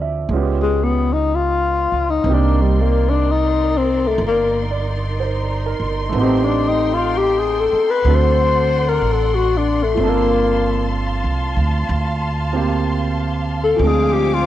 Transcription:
0.00 0.25 D2 medium
0.00 0.28 F3 medium
0.00 0.29 C4 medium
0.00 0.30 D4 medium
0.00 0.32 E4 medium
0.00 0.33 A4 medium
0.00 0.32 C5 soft
0.00 0.16 D5 soft
0.00 0.50 E5 medium
0.29 1.88 C#2 medium
0.29 2.25 G#3 medium
0.29 2.26 B3 soft
0.29 2.26 C#4 soft
0.34 2.27 F4 soft
0.34 2.28 G4 medium
0.63 0.85 G#3 medium
0.84 1.15 B3 medium
1.13 1.37 D#4 medium
1.35 2.12 F4 medium
1.92 2.22 C#2 medium
2.10 2.36 D#4 medium
2.24 4.15 C2 medium
2.24 6.13 A#3 medium
2.24 6.13 C4 soft
2.24 8.02 D#4 medium
2.24 6.09 A#4 medium
2.24 6.10 D5 medium
2.24 13.77 C6 medium
2.29 6.14 D#4 soft
2.29 6.15 G4 medium
2.34 2.63 D4 medium
2.62 2.83 G3 medium
2.82 3.11 A#3 medium
3.09 3.33 D4 medium
3.31 3.79 D#4 medium
3.78 4.09 C4 medium
4.07 4.21 A3 medium
4.18 5.75 G1 medium
4.27 4.63 A#3 medium
4.71 5.38 D5 soft
5.20 5.94 C5 soft
5.66 6.34 A#4 soft
5.80 6.10 G1 medium
6.09 7.70 A1 medium
6.09 8.04 A3 medium
6.09 8.06 B3 medium
6.09 9.94 A4 medium
6.09 8.03 G5 medium
6.15 8.05 C4 soft
6.15 8.09 D#4 medium
6.20 6.45 C4 medium
6.20 8.10 G4 medium
6.44 6.70 D4 medium
6.68 6.96 D#4 medium
6.94 7.19 F4 medium
7.18 7.41 G4 medium
7.39 7.62 G#4 medium
7.61 7.92 A4 loud
7.73 muted upright bass stroke soft
7.91 8.16 B4 medium
8.02 8.98 D2 medium
8.02 9.98 F#3 medium
8.02 9.95 D5 medium
8.02 9.94 F#5 medium
8.07 9.99 A3 soft
8.07 9.98 C4 soft
8.07 10.00 D4 soft
8.07 10.00 A4 medium
8.15 8.91 C5 loud
8.89 9.14 A#4 medium
9.02 9.94 A1 medium
9.12 9.36 A4 medium
9.35 9.59 F#4 medium
9.57 9.85 D4 medium
9.84 10.11 A3 medium
9.95 11.21 G1 medium
9.95 13.75 F3 medium
9.95 12.51 A#3 medium
9.95 14.46 F5 medium
9.95 13.75 A5 medium
10.00 12.52 C4 medium
10.00 13.83 D4 medium
10.05 13.84 A4 medium
10.10 10.99 A#3 medium
11.24 11.54 C2 medium
11.56 11.86 D2 medium
11.89 13.77 D2 medium
12.53 13.81 A#3 soft
12.53 13.81 C4 soft
12.53 13.82 G4 medium
13.64 13.88 A4 medium
13.76 14.46 D2 medium
13.76 14.46 F3 medium
13.76 14.46 G#3 medium
13.81 14.46 C4 soft
13.81 14.46 D4 soft
13.81 14.46 C5 medium
13.81 14.46 G#5 medium
13.81 14.46 D6 medium
13.86 14.46 F4 medium
13.86 14.14 G#4 medium
14.13 14.36 G4 medium
14.34 14.46 F4 medium

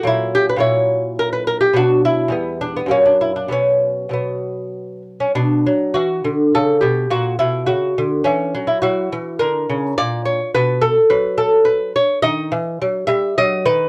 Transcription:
0.03 0.55 A#2 medium
0.03 0.57 F#3 medium
0.03 0.34 E4 medium
0.35 0.49 G4 medium
0.49 0.60 B4 medium
0.56 1.69 A#2 medium
0.56 1.70 F#3 medium
0.56 1.71 E4 soft
0.56 1.15 C#5 medium
1.19 1.32 A#4 loud
1.33 1.47 B4 medium
1.47 1.60 A#4 medium
1.61 1.75 G4 medium
1.73 2.30 B2 medium
1.73 2.31 F#3 soft
1.73 2.31 D4 medium
1.73 2.03 F#4 medium
2.05 2.60 E4 medium
2.28 2.86 E2 medium
2.28 2.88 G3 soft
2.28 2.75 B3 soft
2.61 2.76 D4 medium
2.76 2.91 B3 medium
2.86 3.48 F#2 medium
2.86 3.48 F#3 soft
2.86 3.49 A#3 soft
2.91 3.06 C#4 medium
3.06 3.21 D4 medium
3.21 3.36 E4 medium
3.36 3.52 D4 medium
3.48 4.08 B2 medium
3.48 4.10 F#3 soft
3.48 4.11 B3 soft
3.48 4.11 C#4 medium
4.09 5.30 B2 soft
4.09 5.31 F#3 soft
4.13 5.02 B3 soft
5.20 5.35 C#4 medium
5.35 5.64 B2 medium
5.35 5.93 D4 medium
5.66 5.95 F#3 medium
5.94 6.24 E3 medium
5.94 6.51 F#4 medium
6.24 6.53 D3 medium
6.55 6.82 C#3 medium
6.55 6.80 A4 medium
6.81 7.10 B2 medium
6.81 7.10 G4 medium
7.10 7.39 A#2 medium
7.10 7.38 F#4 medium
7.39 7.68 B2 medium
7.39 7.66 E4 medium
7.66 7.96 C#3 medium
7.66 8.23 F#4 medium
7.98 8.25 D3 medium
8.24 8.53 E3 medium
8.24 8.67 C#4 medium
8.55 8.82 F#3 medium
8.67 8.81 E4 medium
8.82 9.11 F#3 medium
8.82 10.52 E4 soft
8.82 9.38 F#4 medium
9.12 9.40 E3 medium
9.39 9.68 D3 medium
9.39 9.96 A#4 medium
9.70 9.97 C#3 medium
9.98 10.40 A#2 medium
9.98 10.25 D5 loud
10.25 10.54 C#5 medium
10.54 10.96 B2 medium
10.54 10.82 B4 loud
10.81 11.10 A4 medium
11.10 11.92 F#3 medium
11.10 11.38 B4 medium
11.38 11.66 A4 medium
11.65 11.94 B4 medium
11.96 12.22 C#5 loud
12.22 12.51 D#3 medium
12.22 13.05 D#5 loud
12.52 12.79 E3 medium
12.82 13.07 F#3 medium
13.07 13.35 G3 medium
13.07 13.35 E5 loud
13.38 13.65 F#3 medium
13.38 13.65 D#5 loud
13.66 13.89 D#3 medium
13.66 13.89 B4 loud

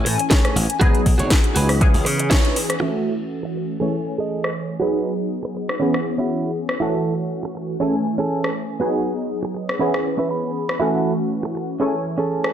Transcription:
0.00 0.76 E3 medium
0.00 0.76 A3 medium
0.00 0.77 C#4 medium
0.00 0.77 G#5 medium
0.05 0.16 A2 medium
0.05 muted clean electric guitar stroke loud
0.05 open hi-hat loud
0.18 muted clean electric guitar stroke soft
0.18 closed hi-hat medium
0.30 0.56 G#4 medium
0.30 0.56 A4 medium
0.30 0.57 C#5 medium
0.30 kick loud
0.30 snare loud
0.30 closed hi-hat medium
0.45 cross-stick medium
0.45 closed hi-hat soft
0.56 0.66 A1 medium
0.56 open hi-hat loud
0.70 closed hi-hat medium
0.80 0.91 G#1 loud
0.80 1.76 F#3 medium
0.80 1.77 B3 medium
0.80 1.77 D#4 medium
0.80 1.00 F#4 loud
0.80 1.00 G#4 loud
0.80 1.77 G#4 medium
0.80 1.01 B4 loud
0.80 kick loud
0.80 closed hi-hat medium
0.95 closed hi-hat soft
1.06 1.16 B1 loud
1.06 kick medium
1.06 open hi-hat loud
1.18 1.28 G#1 medium
1.18 1.30 F#4 medium
1.18 1.31 G#4 medium
1.18 1.31 C#5 medium
1.18 closed hi-hat medium
1.30 kick loud
1.30 snare loud
1.30 closed hi-hat medium
1.43 muted clean electric guitar stroke soft
1.43 closed hi-hat soft
1.55 1.88 C#2 medium
1.55 1.69 F#4 medium
1.55 1.69 G#4 medium
1.55 1.70 B4 loud
1.55 open hi-hat loud
1.69 cross-stick medium
1.69 open hi-hat medium
1.80 2.76 E3 medium
1.80 2.77 B3 medium
1.80 2.77 C#4 medium
1.80 2.77 G#4 medium
1.80 muted clean electric guitar stroke soft
1.80 kick loud
1.80 closed hi-hat medium
1.94 2.03 C#2 medium
1.94 open hi-hat medium
2.05 2.38 C#3 medium
2.05 muted clean electric guitar stroke loud
2.05 open hi-hat loud
2.18 muted clean electric guitar stroke soft
2.18 closed hi-hat medium
2.30 2.56 E4 medium
2.30 2.56 B4 medium
2.30 2.57 C#5 medium
2.30 kick loud
2.30 snare loud
2.30 closed hi-hat medium
2.45 closed hi-hat soft
2.56 open hi-hat loud
2.70 cross-stick medium
2.70 closed hi-hat medium
2.80 3.76 E3 medium
2.80 3.76 A3 medium
2.80 3.77 C#4 medium
2.80 3.12 F#4 medium
2.80 3.77 F#4 medium
2.80 3.13 A4 medium
2.80 3.13 E5 loud
2.80 crash medium
3.43 muted clean electric guitar stroke medium
3.55 muted clean electric guitar stroke soft
3.80 4.76 E3 medium
3.80 4.76 A3 medium
3.80 4.77 C#4 medium
3.80 3.94 G#4 medium
3.80 3.94 A4 medium
3.80 3.95 C#5 medium
3.80 4.77 G#5 medium
4.05 muted clean electric guitar stroke soft
4.18 4.50 G#4 medium
4.18 4.50 A4 medium
4.18 4.51 D#5 medium
4.44 cross-stick medium
4.80 5.76 F#3 medium
4.80 5.76 B3 medium
4.80 5.77 D#4 medium
4.80 5.12 F#4 loud
4.80 5.13 G#4 medium
4.80 5.77 G#4 medium
4.80 5.13 B4 loud
5.43 muted clean electric guitar stroke medium
5.55 muted clean electric guitar stroke soft
5.69 cross-stick medium
5.80 6.76 E3 medium
5.80 6.76 B3 medium
5.80 5.94 C#4 medium
5.80 6.77 C#4 medium
5.80 5.94 E4 medium
5.80 6.77 G#4 medium
5.80 5.95 B4 medium
5.94 cross-stick soft
6.05 muted clean electric guitar stroke soft
6.18 6.50 C#4 medium
6.18 6.50 E4 medium
6.18 6.51 F#4 medium
6.69 cross-stick medium
6.80 7.76 E3 medium
6.80 7.76 A3 medium
6.80 7.77 C#4 medium
6.80 7.12 E4 loud
6.80 7.13 F#4 medium
6.80 7.77 F#4 medium
6.80 7.13 A4 loud
7.43 muted clean electric guitar stroke medium
7.55 muted clean electric guitar stroke soft
7.80 8.76 E3 medium
7.80 8.76 A3 medium
7.80 7.94 C#4 medium
7.80 8.77 C#4 medium
7.80 7.94 G#4 medium
7.80 7.95 A4 medium
7.80 8.77 G#5 medium
8.05 muted clean electric guitar stroke soft
8.18 8.50 C#4 medium
8.18 8.50 G#4 medium
8.18 8.51 A4 medium
8.44 cross-stick medium
8.80 9.76 F#3 medium
8.80 9.12 B3 loud
8.80 9.76 B3 medium
8.80 9.77 D#4 medium
8.80 9.13 F#4 medium
8.80 9.13 G#4 loud
8.80 9.77 G#4 medium
9.43 muted clean electric guitar stroke medium
9.54 muted clean electric guitar stroke soft
9.69 cross-stick medium
9.79 10.76 E3 medium
9.79 10.76 B3 medium
9.79 9.94 C#4 medium
9.79 10.77 C#4 medium
9.79 9.94 E4 medium
9.79 10.77 G#4 medium
9.79 9.95 B4 medium
9.94 cross-stick medium
10.04 muted clean electric guitar stroke soft
10.18 10.50 C#4 medium
10.18 10.30 E4 medium
10.18 10.51 B4 medium
10.31 10.77 B5 medium
10.69 cross-stick medium
10.80 11.76 E3 medium
10.80 11.76 A3 medium
10.80 11.77 C#4 medium
10.80 11.12 E4 loud
10.80 11.12 F#4 medium
10.80 11.77 F#4 medium
10.80 11.13 A4 loud
11.43 muted clean electric guitar stroke medium
11.55 muted clean electric guitar stroke soft
11.80 12.53 E3 medium
11.80 12.53 A3 medium
11.80 11.94 C#4 medium
11.80 12.53 C#4 medium
11.80 11.94 G#4 medium
11.80 11.95 A4 medium
11.80 12.53 G#5 medium
12.05 muted clean electric guitar stroke soft
12.18 12.49 C#4 medium
12.18 12.50 G#4 medium
12.18 12.50 A4 medium
12.44 cross-stick medium

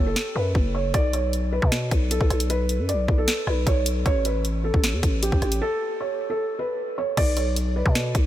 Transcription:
0.00 0.15 F#1 loud
0.07 0.34 A4 medium
0.16 snare loud
0.36 0.54 F#2 loud
0.36 0.72 B4 medium
0.55 0.92 F#1 loud
0.55 kick loud
0.75 0.92 C#5 medium
0.94 1.60 B1 loud
0.94 1.12 D5 loud
0.94 kick loud
0.94 closed hi-hat medium
1.13 1.31 C#5 medium
1.13 closed hi-hat medium
1.33 closed hi-hat medium
1.52 2.07 B4 medium
1.62 1.90 B2 loud
1.62 kick loud
1.72 snare loud
1.72 closed hi-hat medium
1.91 2.20 B1 loud
1.91 kick medium
1.91 closed hi-hat medium
2.11 2.48 A4 medium
2.11 closed hi-hat medium
2.21 2.30 B1 loud
2.21 kick medium
2.30 2.81 B1 loud
2.30 cross-stick medium
2.30 closed hi-hat medium
2.40 closed hi-hat medium
2.50 2.86 B4 medium
2.50 closed hi-hat medium
2.69 closed hi-hat medium
2.79 2.95 F#2 loud
2.89 3.16 D5 medium
2.89 closed hi-hat medium
2.94 3.08 B1 loud
3.08 3.27 B1 loud
3.08 kick loud
3.18 3.46 A4 medium
3.28 snare loud
3.28 closed hi-hat medium
3.47 3.66 B1 loud
3.47 3.65 B4 medium
3.47 cross-stick medium
3.67 4.04 B1 loud
3.67 3.85 C#5 medium
3.67 kick loud
3.67 closed hi-hat medium
3.86 closed hi-hat medium
4.06 4.71 A1 loud
4.06 4.23 C#5 loud
4.06 kick loud
4.06 closed hi-hat medium
4.25 4.43 B4 medium
4.25 closed hi-hat medium
4.45 closed hi-hat medium
4.64 5.19 A4 medium
4.74 4.95 A1 loud
4.74 kick loud
4.84 snare loud
4.84 closed hi-hat medium
4.93 5.03 E2 loud
5.03 5.31 A1 loud
5.03 kick loud
5.03 closed hi-hat medium
5.23 5.59 G4 medium
5.23 closed hi-hat medium
5.32 5.42 A1 loud
5.32 kick medium
5.42 5.61 A1 loud
5.42 cross-stick medium
5.42 closed hi-hat medium
5.52 closed hi-hat medium
5.61 5.98 A4 loud
6.01 6.28 C#5 medium
6.30 6.57 A4 medium
6.59 6.96 B4 medium
6.98 7.16 C#5 medium
7.17 7.83 B1 loud
7.17 7.35 D5 loud
7.17 kick loud
7.17 closed hi-hat medium
7.17 crash loud
7.37 7.55 C#5 medium
7.37 closed hi-hat medium
7.56 closed hi-hat medium
7.76 8.26 B4 medium
7.86 8.14 B2 loud
7.86 kick loud
7.95 snare loud
7.95 closed hi-hat medium
8.15 8.26 B1 loud
8.15 kick loud
8.15 closed hi-hat medium

